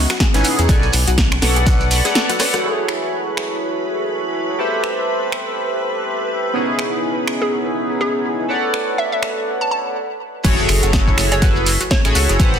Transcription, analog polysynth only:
0.34 0.66 B3 loud
0.34 0.66 C#4 medium
0.34 0.66 D#4 medium
0.34 0.67 E4 medium
0.34 0.67 G#4 loud
0.68 0.87 A4 medium
0.68 0.87 B4 medium
0.68 0.87 C#5 medium
0.68 0.87 D5 medium
0.68 0.87 G#5 loud
1.42 1.88 A4 loud
1.42 1.88 B4 medium
1.42 1.88 C#5 medium
1.42 1.89 D5 medium
1.42 1.89 F#5 loud
1.90 2.03 A4 medium
1.90 2.03 B4 medium
1.90 2.03 C#5 medium
1.90 2.03 D5 medium
1.90 2.03 F#5 medium
2.04 2.13 A4 medium
2.04 2.14 B4 medium
2.04 2.14 C#5 medium
2.04 2.14 D5 medium
2.04 2.14 F#5 medium
2.15 2.33 A4 medium
2.15 2.33 B4 medium
2.15 2.33 C#5 medium
2.15 2.33 D5 medium
2.15 2.33 F#5 loud
2.39 2.57 A4 medium
2.39 2.57 B4 medium
2.39 2.58 C#5 medium
2.39 2.58 D5 medium
2.39 2.58 F#5 loud
2.63 4.56 E4 medium
2.63 4.56 F#4 medium
2.63 4.57 G#4 medium
2.63 4.57 A4 medium
2.63 4.57 C#5 medium
4.58 6.51 G4 medium
4.58 6.52 A4 medium
4.58 6.52 B4 medium
4.58 6.52 C5 medium
4.58 6.52 E5 medium
6.53 8.46 B3 medium
6.53 8.47 C#4 medium
6.53 8.47 D#4 medium
6.53 8.47 E4 medium
6.53 8.47 G#4 medium
8.48 9.95 A4 medium
8.48 9.96 B4 medium
8.48 9.96 C#5 medium
8.48 9.96 D5 medium
8.48 9.96 F#5 medium
10.43 11.15 E4 medium
10.43 11.15 F#4 medium
10.43 11.15 G#4 medium
10.43 11.15 A4 medium
10.43 11.16 C#5 loud
11.17 11.35 E4 medium
11.17 11.35 F#4 medium
11.17 11.36 G#4 medium
11.17 11.36 A4 medium
11.17 11.36 C#5 medium
11.42 11.69 E4 medium
11.42 11.69 F#4 medium
11.42 11.69 G#4 medium
11.42 11.69 A4 medium
11.42 11.69 B4 medium
12.04 12.37 E4 loud
12.04 12.37 F#4 medium
12.04 12.37 G#4 medium
12.04 12.37 A4 medium
12.04 12.37 C#5 loud
12.39 12.57 G4 medium
12.39 12.57 A4 medium
12.39 12.57 B4 medium
12.39 12.58 C5 medium
12.39 12.58 F#5 loud

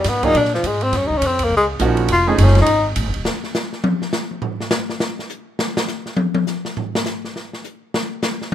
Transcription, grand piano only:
0.23 0.34 F#3 medium
0.23 0.34 A#3 medium
0.23 0.34 D4 medium
0.23 0.34 F4 medium
0.23 0.35 G#4 medium
1.80 2.09 F3 medium
1.80 2.10 A#3 medium
1.80 2.10 C#4 medium
1.80 2.10 D#4 medium
1.80 2.10 F#4 medium
2.27 2.66 F3 medium
2.27 2.66 A3 medium
2.27 2.66 C#4 medium
2.27 2.66 D#4 medium
2.27 2.66 G#4 medium

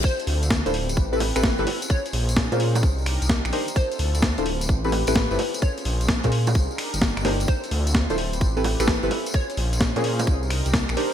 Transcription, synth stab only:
0.66 0.72 D4 loud
0.66 0.72 E4 medium
0.66 0.72 F4 medium
0.66 0.72 A4 medium
0.66 0.72 C5 loud
1.13 1.19 C4 medium
1.13 1.19 E4 medium
1.13 1.19 G4 medium
1.13 1.19 A4 medium
1.13 1.19 B4 loud
1.36 1.49 C4 loud
1.36 1.49 E4 medium
1.36 1.49 G4 medium
1.36 1.49 A4 medium
1.36 1.49 B4 loud
1.59 1.65 C4 medium
1.59 1.66 E4 medium
1.59 1.65 G4 medium
1.59 1.66 A4 medium
1.59 1.65 B4 loud
2.52 2.82 C#4 medium
2.52 2.82 F4 medium
2.52 2.82 G#4 medium
2.52 2.82 A#4 medium
2.52 2.82 C5 medium
3.53 3.66 D4 medium
3.53 3.66 D#4 medium
3.53 3.66 G4 medium
3.53 3.66 A#4 medium
3.53 3.66 C5 loud
4.38 4.45 D4 medium
4.38 4.45 E4 medium
4.38 4.45 F4 medium
4.38 4.45 A4 medium
4.38 4.45 C5 loud
4.85 4.91 C4 medium
4.85 4.91 E4 medium
4.85 4.91 G4 medium
4.85 4.91 A4 medium
4.85 4.91 B4 loud
5.08 5.21 C4 medium
5.08 5.21 E4 medium
5.08 5.21 G4 medium
5.08 5.21 A4 medium
5.08 5.21 B4 loud
5.31 5.38 C4 medium
5.31 5.38 E4 medium
5.31 5.38 G4 medium
5.31 5.38 A4 medium
5.31 5.38 B4 loud
6.24 6.54 C#4 medium
6.24 6.54 F4 medium
6.24 6.54 G#4 medium
6.24 6.54 A#4 medium
6.24 6.54 C5 medium
7.25 7.38 D4 medium
7.25 7.38 D#4 medium
7.25 7.38 G4 medium
7.25 7.38 A#4 medium
7.25 7.38 C5 loud
8.10 8.17 D4 medium
8.10 8.17 E4 medium
8.10 8.17 F4 medium
8.10 8.17 A4 medium
8.10 8.17 C5 loud
8.57 8.63 C4 loud
8.57 8.63 E4 medium
8.57 8.63 G4 medium
8.57 8.63 A4 medium
8.57 8.63 B4 loud
8.80 8.93 C4 medium
8.80 8.93 E4 medium
8.80 8.93 G4 medium
8.80 8.93 A4 medium
8.80 8.93 B4 loud
9.03 9.10 C4 medium
9.03 9.10 E4 medium
9.03 9.10 G4 medium
9.03 9.10 A4 medium
9.03 9.10 B4 loud
9.96 10.26 C#4 medium
9.96 10.26 F4 medium
9.96 10.26 G#4 medium
9.96 10.26 A#4 medium
9.96 10.26 C5 medium
10.97 11.10 D4 medium
10.97 11.10 D#4 medium
10.97 11.10 G4 medium
10.97 11.10 A#4 medium
10.97 11.10 C5 loud

